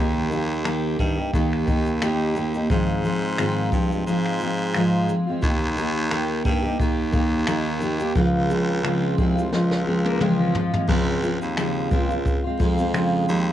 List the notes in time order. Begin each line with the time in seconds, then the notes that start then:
Already playing: D#2 D#3 A#3 D#4
0.00 G4
0.30 D#3 A#3 D#4 G4, shaker
0.64 D#3 A#3 D#4 G4, finger snap, shaker
0.98 G2 D#3 A#3 D#4 G4, kick, shaker
1.16 A#3 D#4 G4
1.33 D#2 D#3 A#3 D#4 G4, kick, shaker
1.53 finger snap
1.66 D#3 A#3 D#4 G4, kick, shaker
1.86 shaker
2.01 D#3 A#3 D#4 G4, finger snap, shaker
2.35 D#3 A#3 D#4 G4, shaker
2.54 A#3 D#4 G4, shaker
2.69 G#2 D#3 F3 G#3 C4 F4, kick, shaker
3.03 F3 G#3 C4 F4, shaker
3.37 G#2 D#3 F3 G#3 C4 F4, finger snap, shaker
3.71 G2 F3 G#3 C4 F4, kick, shaker
3.90 F3 G#3 C4 F4, shaker
4.06 G#2 F3 G#3 C4 F4, shaker
4.26 finger snap
4.40 F3 G#3 C4 F4, shaker
4.74 G#2 D#3 F3 G#3 C4 F4, finger snap, shaker
5.08 F3 G#3 C4 F4, shaker
5.27 F3 G#3 C4 F4
5.43 D#2 D#3 A#3 D#4 G4, kick, shaker
5.76 D#3 A#3 D#4 G4, shaker
6.11 D#3 A#3 D#4 G4, finger snap, shaker
6.44 G2 D#3 A#3 D#4 G4, kick, shaker
6.63 A#3 D#4 G4
6.79 D#2 D#3 A#3 D#4 G4, kick, shaker
7.12 D#3 A#3 D#4 G4, kick, shaker
7.47 D#3 A#3 D#4 G4, finger snap, shaker
7.80 D#3 A#3 D#4 G4, shaker
7.99 A#3 D#4 G4, shaker
8.15 C#2 C#3 F3 G#3 C4 F4, kick, shaker
8.49 F3 G#3 C4 F4, shaker
8.83 C#3 F3 G#3 C4 F4, finger snap, shaker
9.17 C2 F3 G#3 C4 F4, kick, shaker
9.35 G#3 C4 F4, shaker
9.51 C#2 F3 G#3 C4 F4, snare
9.71 snare
9.85 F3 G#3 C4 F4
10.05 A#3, high tom
10.19 C#3 F3 G#3 C4 F4, mid tom
10.39 F3
10.53 F3 G#3 C4 F4, floor tom
10.72 G#3 C4 F4, floor tom
10.87 C#2 C#3 F3 G#3 C4 F4, kick, crash
11.21 F3 G#3 C4 F4, shaker
11.42 D#2, shaker
11.56 C#3 F3 G#3 C4 F4, finger snap, shaker
11.90 C#2 F3 G#3 C4 F4, kick, shaker
12.09 G#3 C4 F4, shaker
12.26 kick, shaker
12.44 G#3 C4 F4
12.58 F2 F3 G#3 C4 F4, kick, shaker
12.78 G#3 C4 F4, shaker
12.93 C#3 F3 G#3 C4 F4, finger snap, shaker
13.28 D#2 F3 G#3 C4 F4, shaker